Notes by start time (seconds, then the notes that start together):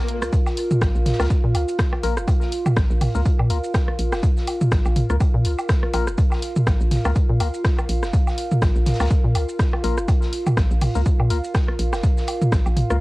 Already playing: A#1 F4 A#4 F5, swell
0.08 open hi-hat
0.22 C#2, cross-stick, closed hi-hat, shaker
0.33 kick, closed hi-hat, shaker
0.46 snare, low woodblock, shaker
0.57 closed hi-hat, open hi-hat
0.71 mid tom, shaker
0.81 A#1, kick, cross-stick, snare, closed hi-hat, low woodblock, shaker
0.95 A#1, shaker
1.06 snare, closed hi-hat, mid tom, open hi-hat
1.12 snare, closed hi-hat
1.20 C#2 A#3 F4 A#4, cross-stick, snare, closed hi-hat, low woodblock, shaker
1.24 snare, closed hi-hat
1.30 kick, closed hi-hat, shaker
1.44 A#2
1.55 C#2, closed hi-hat, open hi-hat, low woodblock
1.68 closed hi-hat, shaker
1.79 kick, cross-stick, snare, closed hi-hat, shaker
1.93 cross-stick, low woodblock
2.03 A#1 A#3 F4 A#4, closed hi-hat, open hi-hat
2.17 F1, cross-stick, shaker
2.28 kick, closed hi-hat, low woodblock, shaker
2.42 snare, shaker
2.52 closed hi-hat, open hi-hat
2.66 mid tom, low woodblock, shaker
2.76 A#1, kick, cross-stick, snare, closed hi-hat, shaker
2.90 A#1, shaker
3.01 mid tom, open hi-hat, low woodblock
3.15 C#2 A#3 F4 A#4, shaker
3.25 kick, closed hi-hat, shaker
3.39 A#2, low woodblock
3.50 C#2 A#3 F4 A#4, closed hi-hat, open hi-hat
3.63 closed hi-hat, shaker
3.74 kick, cross-stick, snare, closed hi-hat, low woodblock, shaker
3.88 cross-stick
3.99 A#1, closed hi-hat, open hi-hat
4.12 F1, cross-stick, snare, low woodblock, shaker
4.23 kick, closed hi-hat, shaker
4.37 snare, shaker
4.47 closed hi-hat, open hi-hat, low woodblock
4.61 mid tom, shaker
4.72 A#1, kick, cross-stick, snare, closed hi-hat, shaker
4.86 A#1, low woodblock, shaker
4.96 closed hi-hat, mid tom, open hi-hat
5.10 C#2 A#3 F4 A#4, cross-stick, shaker
5.20 kick, closed hi-hat, low woodblock, shaker
5.34 A#2
5.44 C#2, closed hi-hat, open hi-hat
5.59 closed hi-hat, low woodblock, shaker
5.69 kick, cross-stick, snare, closed hi-hat, shaker
5.83 cross-stick
5.94 A#1 A#3 F4 A#4, closed hi-hat, open hi-hat, low woodblock
6.07 F1, cross-stick, shaker
6.18 kick, closed hi-hat, shaker
6.32 snare, low woodblock, shaker
6.42 closed hi-hat, open hi-hat
6.56 mid tom, shaker
6.67 A#1, kick, cross-stick, snare, closed hi-hat, low woodblock, shaker
6.81 A#1, shaker
6.91 snare, mid tom, open hi-hat
7.05 C#2 A#3 F4 A#4, cross-stick, low woodblock, shaker
7.16 kick, closed hi-hat, shaker
7.29 A#2
7.40 C#2 A#3 F4 A#4, closed hi-hat, open hi-hat, low woodblock
7.54 closed hi-hat, shaker
7.64 kick, cross-stick, snare, closed hi-hat, shaker
7.78 cross-stick, low woodblock, shaker
7.89 A#1, closed hi-hat, open hi-hat
8.03 F1, cross-stick, snare, shaker
8.13 kick, closed hi-hat, shaker
8.27 snare, low woodblock, shaker
8.38 closed hi-hat, open hi-hat
8.51 mid tom, shaker
8.62 A#1, kick, cross-stick, snare, closed hi-hat, low woodblock, shaker
8.76 A#1, shaker
8.86 snare, closed hi-hat, mid tom, open hi-hat
8.94 snare, closed hi-hat
9.00 C#2 A#3 F4 A#4, cross-stick, snare, closed hi-hat, low woodblock, shaker
9.05 snare, closed hi-hat
9.10 kick, closed hi-hat, shaker
9.25 A#2
9.35 C#2, closed hi-hat, open hi-hat, low woodblock
9.48 closed hi-hat, shaker
9.59 kick, cross-stick, snare, closed hi-hat, shaker
9.73 cross-stick, low woodblock
9.84 A#1 A#3 F4 A#4, closed hi-hat, open hi-hat
9.98 F1, cross-stick, shaker
10.08 kick, closed hi-hat, low woodblock, shaker
10.22 snare, shaker
10.33 closed hi-hat, open hi-hat
10.47 mid tom, low woodblock, shaker
10.57 A#1, kick, cross-stick, snare, closed hi-hat, shaker
10.71 A#1, shaker
10.81 mid tom, open hi-hat, low woodblock
10.95 C#2 A#3 F4 A#4, shaker
11.06 kick, closed hi-hat, shaker
11.20 A#2, low woodblock
11.30 C#2 A#3 F4 A#4, closed hi-hat, open hi-hat
11.44 closed hi-hat, shaker
11.55 kick, cross-stick, snare, closed hi-hat, low woodblock, shaker
11.68 cross-stick
11.79 A#1, closed hi-hat, open hi-hat
11.93 F1, cross-stick, snare, low woodblock, shaker
12.03 kick, closed hi-hat, shaker
12.17 snare, shaker
12.27 closed hi-hat, open hi-hat, low woodblock
12.42 mid tom, shaker
12.52 A#1, kick, cross-stick, snare, closed hi-hat, shaker
12.66 A#1, low woodblock, shaker
12.77 closed hi-hat, mid tom, open hi-hat
12.90 C#2 A#3 F4 A#4, cross-stick, shaker